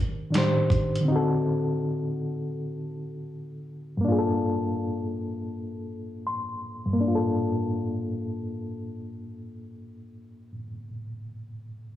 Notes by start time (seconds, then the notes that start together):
Already playing: D#3 D4 D#4 G4 A#4
0.30 D#3 D4 D#4, closed hi-hat
0.35 G4 C5, snare
0.70 kick, closed hi-hat
0.95 closed hi-hat
1.01 D3 C4
1.08 D#4 F#4
1.16 A4
3.97 G2 A#3
4.05 D4 F4
4.12 G#4
4.19 A4
6.27 C6
6.86 G2
6.93 A#3
7.01 D4
7.08 F4
7.15 A4